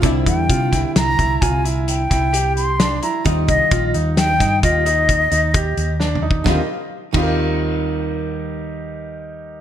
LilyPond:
<<
  \new Staff \with { instrumentName = "Flute" } { \time 7/4 \key ees \major \tempo 4 = 131 r8 g''4. bes''4 aes''8 r8 g''4. c'''4 bes''8 | r8 ees''4 r8 g''4 ees''2. r4 | r1. r4 | }
  \new Staff \with { instrumentName = "Grand piano" } { \time 7/4 \key ees \major e'4 f'8 e'4 e'8 f'8 e'4 e'8 g'4 d'8 e'8 | ees'4 f'8 ees'4 ees'8 f'8 ees'4 ees'8 g'4 d'8 ees'8 | <ees' g' bes' ees''>8 r4 <ees' g' bes' ees''>1~ <ees' g' bes' ees''>4. | }
  \new Staff \with { instrumentName = "Hollow-body jazz guitar" } { \time 7/4 \key ees \major <d g c' e'>1.~ <d g c' e'>4 | <ees g c' f'>1.~ <ees g c' f'>4 | <d g c' f'>8 r4 <ees g c' f'>1~ <ees g c' f'>4. | }
  \new Staff \with { instrumentName = "Fretless electric bass" } { \clef bass \time 7/4 \key ees \major c,8 e,8 c8 c,16 r16 c,8 c,8 c,4. c,2 r8 | ees,8 c,16 r16 bes,,8 ees,4 g,8 ees,4. ees,4 ees,4. | ees,8 r4 ees,1~ ees,4. | }
  \new DrumStaff \with { instrumentName = "Drums" } \drummode { \time 7/4 <hh bd>8 <hh bd>8 <hh bd>8 <hh bd sn>8 <hh sn>8 <hh bd>8 <hh bd>8 hh8 hh8 <hh bd sn>8 hh8 hh8 <hh sn>8 hh8 | <hh bd>8 <hh bd>8 <hh bd>8 hh8 <hh sn>8 <hh bd sn>8 <hh bd>8 hh8 <hh bd>8 hh8 <hh bd>8 hh8 \tuplet 3/2 { sn8 toml8 bd8 } | <bd sn>4 r8 <cymc bd>8 r4 r4 r4 r4 r4 | }
>>